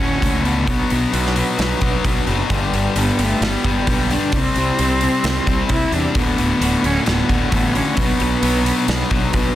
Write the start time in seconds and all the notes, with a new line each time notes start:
Already playing: A2 C#4
0.00 D1 D2 A2 D3 A3 F#4, open hi-hat
0.21 C#2 D2 A2 D3 A3 F#4, kick, open hi-hat
0.42 D2 B3, open hi-hat
0.47 A2 D3
0.67 B1 B2 F#3 B3 D4 F#4 B4, kick, open hi-hat
0.90 B1 B2 F#3 B3, open hi-hat
1.12 B1 B2 F#3 B3 D4 F#4 B4, open hi-hat
1.26 snare
1.35 B2 F#3 B3 D4 F#4 B4, open hi-hat
1.58 B1 B2 F#3 B3 D4 F#4 B4, snare, open hi-hat
1.81 B1 B2 F#3 B3 D4 F#4 B4, kick, open hi-hat
2.04 B1 B2 F#3 B3 D4 F#4 B4, kick, open hi-hat
2.27 F#1 B2 F#3 B3, open hi-hat
2.50 G1 G2 D3 G3 B3 D4 G4, kick, open hi-hat
2.73 G1 G2 D3 G3, open hi-hat
2.95 G1 G2 D3 G3 B3 D4 G4, open hi-hat
3.18 G1 G2 D3 G3 B3 D4 G4, open hi-hat
3.23 A3
3.41 G1 G2 D3 G3 B3 D4 G4, snare, open hi-hat
3.45 B3
3.63 G1 G2 D3 G3 B3 D4 G4, kick, open hi-hat
3.86 B1 G2 D3 G3 B3 D4 G4, kick, open hi-hat
4.11 G2 D3 G3 D4, open hi-hat
4.32 C2 C3 G3 C4 E4 G4 C5, kick, open hi-hat
4.36 C4
4.56 C2 C3 G3 C4, open hi-hat
4.78 C2 C3 G3 C4 E4 G4 C5, open hi-hat
5.00 C3 G3 C4 E4 G4 C5, open hi-hat
5.23 C2 C3 G3 C4 E4 G4 C5, snare, open hi-hat
5.47 C2 C3 G3 C4 E4 G4 C5, kick, open hi-hat
5.69 C2 C3 G3 C4 E4 G4 C5, kick, open hi-hat
5.92 E2 C3 G3 C4 D4, open hi-hat
6.14 D1 D2 A2 D3 A3 B3 F#4, kick, open hi-hat
6.37 D1 D2 A2 D3, open hi-hat
6.60 D1 D2 A2 D3 A3 F#4, open hi-hat
6.83 D1 D2 A2 D3 A3 C#4 F#4, open hi-hat
7.04 D1 D2 A2 D3 A3 B3 F#4, snare, open hi-hat
7.28 D1 D2 A2 D3 A3 F#4, kick, open hi-hat
7.50 A1 D2 A2 D3 A3 B3 F#4, kick, open hi-hat
7.73 D2 A2 D3 C#4, open hi-hat
7.95 B1 B2 F#3 B3 D4 F#4 B4, kick, open hi-hat
8.18 B1 B2 F#3 B3, open hi-hat
8.42 B1 B2 F#3 B3 D4 F#4 B4, open hi-hat
8.64 B2 F#3 B3 D4 F#4 B4, open hi-hat
8.87 B1 B2 F#3 B3 D4 F#4 B4, snare, open hi-hat
9.10 B1 B2 F#3 B3 D4 F#4 B4, kick, open hi-hat
9.32 B1 B2 F#3 B3 D4 F#4 B4, kick, open hi-hat